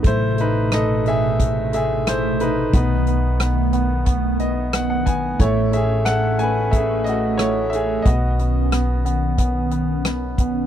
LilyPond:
<<
  \new Staff \with { instrumentName = "Grand piano" } { \time 4/4 \key a \lydian \tempo 4 = 90 << { r1 | r2 r8 dis''8 fis''16 fis''16 gis''8 | r1 | r1 | } \\ { <e' c''>8 <dis' b'>8 <a' dis''>8 <gis' e''>4 <gis' e''>8 <e' c''>8 <dis' b'>8 | <dis' b'>2. r4 | <e' cis''>8 <gis' e''>8 <a' fis''>8 <b' gis''>8 <gis' e''>8 <fis' dis''>8 <e' cis''>8 <gis' e''>8 | <fis' dis''>2.~ <fis' dis''>8 r8 | } >> }
  \new Staff \with { instrumentName = "Grand piano" } { \time 4/4 \key a \lydian a8 a8 a8 a8 a8 a8 a8 a8 | b8 b8 b8 b8 b8 b8 b8 b8 | a8 a8 a8 a8 a8 a8 a8 a8 | b8 b8 b8 b8 b8 b8 b8 b8 | }
  \new Staff \with { instrumentName = "Analog synth pad" } { \time 4/4 \key a \lydian << { <b, c>1 | <dis b>1 | cis'1 | <dis cis'>1 | } \\ { a1~ | a1 | a1 | b1 | } >> }
  \new Staff \with { instrumentName = "Upright bass" } { \clef bass \time 4/4 \key a \lydian a,,1 | b,,1 | a,,1 | b,,1 | }
  \new DrumStaff \with { instrumentName = "Drums" } \drummode { \time 4/4 <hh bd>8 hh8 <hh ss>8 hh8 <hh bd>8 hh8 <hh ss>8 hh8 | <hh bd>8 hh8 <hh ss>8 hh8 <hh bd>8 hh8 <hh ss>8 <hh bd>8 | <hh bd>8 hh8 <hh ss>8 hh8 <hh bd>8 hh8 <hh ss>8 hh8 | <hh bd>8 hh8 <hh ss>8 hh8 <hh bd>8 hh8 <hh ss>8 <hh bd>8 | }
>>